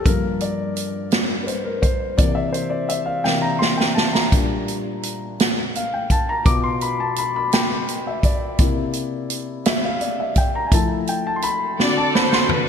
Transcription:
0.06 grand piano G2 F3 A#3 A#4, kick, closed hi-hat
0.40 grand piano D5, closed hi-hat
0.76 closed hi-hat
1.12 snare, closed hi-hat
1.43 grand piano B4
1.47 grand piano C5, closed hi-hat
1.64 grand piano A#4
1.82 grand piano C5, kick, closed hi-hat
2.18 grand piano C3 E3 A#3 D5, kick, closed hi-hat
2.35 grand piano E5
2.53 grand piano C5, closed hi-hat
2.70 grand piano D5
2.89 grand piano E5, closed hi-hat
3.06 grand piano F5
3.24 grand piano C3 E3 A#3 G5, snare
3.42 grand piano A#5
3.59 grand piano C6, snare
3.77 grand piano G5, snare
3.95 grand piano A5, snare
4.13 grand piano A#5, snare
4.32 grand piano A#2 G3 D4, kick, closed hi-hat
4.68 closed hi-hat
5.03 closed hi-hat
5.40 snare, closed hi-hat
5.75 grand piano F5, closed hi-hat
5.94 grand piano G5
6.10 grand piano A5, kick, closed hi-hat
6.29 grand piano A#5
6.45 grand piano B2 B3 F4 D6, kick, closed hi-hat
6.64 grand piano C6
6.81 grand piano B5, closed hi-hat
7.00 grand piano A5
7.16 grand piano B5, closed hi-hat
7.36 grand piano B5
7.53 grand piano G5, snare, closed hi-hat
7.88 closed hi-hat
8.07 grand piano E5
8.23 grand piano D5, kick, closed hi-hat
8.58 grand piano C3 A#3 E4, kick, closed hi-hat
8.93 closed hi-hat
9.30 closed hi-hat
9.65 grand piano E5, snare, closed hi-hat
9.84 grand piano F5
10.01 grand piano D5, closed hi-hat
10.20 grand piano E5
10.36 grand piano G5, kick, closed hi-hat
10.55 grand piano A#5
10.66 grand piano G#5
10.72 grand piano F3 A3 E4 A5, kick, closed hi-hat
11.07 grand piano G5, closed hi-hat
11.27 grand piano A5
11.36 grand piano C6
11.42 grand piano B5, closed hi-hat
11.79 grand piano D3 C4 F#4, string section F#4 A4 D5, snare
11.97 grand piano A5
12.15 string section C5, grand piano B5, snare
12.32 grand piano C6, snare
12.49 string section D4 F#4 B4, floor tom

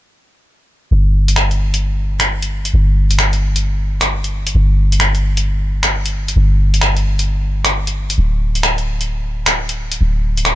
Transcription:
0.91 808-style bass G1
1.28 closed hi-hat
1.36 finger snap
1.51 closed hi-hat
1.74 closed hi-hat
2.20 finger snap, closed hi-hat
2.42 closed hi-hat
2.65 closed hi-hat
2.74 808-style bass G1
3.11 closed hi-hat
3.19 finger snap
3.33 closed hi-hat
3.56 closed hi-hat
4.01 finger snap, closed hi-hat
4.24 closed hi-hat
4.47 closed hi-hat
4.55 808-style bass G1
4.92 closed hi-hat
5.00 finger snap
5.15 closed hi-hat
5.37 closed hi-hat
5.83 finger snap, closed hi-hat
6.06 closed hi-hat
6.28 closed hi-hat
6.36 808-style bass G1
6.74 closed hi-hat
6.81 finger snap
6.97 closed hi-hat
7.19 closed hi-hat
7.65 finger snap, closed hi-hat
7.87 closed hi-hat
8.10 closed hi-hat
8.18 808-style bass D1
8.55 closed hi-hat
8.63 finger snap
8.78 closed hi-hat
9.01 closed hi-hat
9.46 finger snap, closed hi-hat
9.69 closed hi-hat
9.92 closed hi-hat
10.01 808-style bass D1
10.37 closed hi-hat
10.45 finger snap

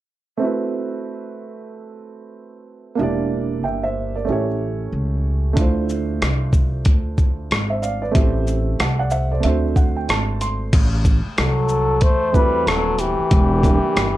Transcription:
0.37 upright piano A3 C4 E4
0.43 upright piano F#4 B4
2.95 upright bass E1, upright piano A#3 D4 E4
3.01 upright piano G4 D5
3.64 upright bass G1, upright piano E5 G5
3.83 upright piano C5 E5
4.16 upright piano A#4 D5
4.25 upright bass A1, upright piano A3 C#4 E4
4.30 upright piano G4 C#5
4.92 upright bass C#2
5.53 upright bass D2, upright piano A3 D4 E4, kick, closed hi-hat
5.59 upright piano F4 C5
5.89 shaker
6.22 upright bass C2, cross-stick, closed hi-hat
6.53 kick, shaker
6.85 upright bass D2, kick, closed hi-hat
7.18 kick, shaker
7.51 upright bass G#1, cross-stick, closed hi-hat
7.70 upright piano C5 E5
7.82 upright piano D5 F5, shaker
8.02 upright piano B4 D5
8.11 upright bass A1, upright piano A3 C4 E4, kick, closed hi-hat
8.17 upright piano G4 C5
8.47 shaker
8.79 upright bass C2, upright piano F#5 A5, cross-stick, closed hi-hat
8.99 upright piano D5 F#5
9.11 upright piano C5 E5 F#5, shaker
9.31 upright piano A4 C5 D5
9.40 upright piano A3 C4 D4 E5, closed hi-hat
9.44 upright bass D2, upright piano F#4 C5
9.76 upright piano F#5, kick, shaker
9.96 upright piano G5
10.09 upright bass G#1, upright piano A5, cross-stick, closed hi-hat
10.41 upright piano C6, closed hi-hat, shaker
10.73 upright bass A1, kick, closed hi-hat, crash
11.05 kick, closed hi-hat, shaker
11.26 muted upright bass stroke
11.38 upright bass C2, trombone F#3, flugelhorn A4, cross-stick, closed hi-hat
11.69 shaker
12.01 upright bass E2, trombone A3, flugelhorn C5, kick, closed hi-hat
12.33 trombone G3, upright piano A3 C4 E4 F#4 B4, flugelhorn B4, kick, shaker
12.66 upright bass D#1, trombone F#3, flugelhorn A4, cross-stick, closed hi-hat
12.99 trombone E3, flugelhorn G4, closed hi-hat, shaker
13.19 muted upright bass stroke
13.31 upright bass E1, kick, closed hi-hat
13.62 upright piano G3 A#3 D4 E4 A#4, kick, closed hi-hat, shaker
13.84 muted upright bass stroke
13.96 upright bass G1, cross-stick, closed hi-hat

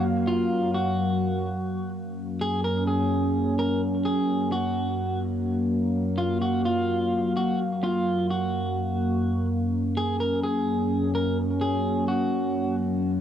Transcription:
Already playing: ambient pad F#2 F#3 A#3 F5
0.28 clean electric guitar F4
0.74 clean electric guitar F#4
1.93 ambient pad F#2 F#3 A#3 C#4
2.41 clean electric guitar G#4
2.64 clean electric guitar A#4
2.87 clean electric guitar G#4
3.59 clean electric guitar A#4
4.05 clean electric guitar G#4
4.52 clean electric guitar F#4
5.71 ambient pad F#2 F5
6.18 clean electric guitar F4
6.42 clean electric guitar F#4
6.66 clean electric guitar F4
7.37 clean electric guitar F#4
7.83 clean electric guitar F4
8.30 clean electric guitar F#4
9.49 ambient pad F#3 C#4
9.97 clean electric guitar G#4
10.20 clean electric guitar A#4
10.43 clean electric guitar G#4
11.15 clean electric guitar A#4
11.61 clean electric guitar G#4
12.08 clean electric guitar F#4

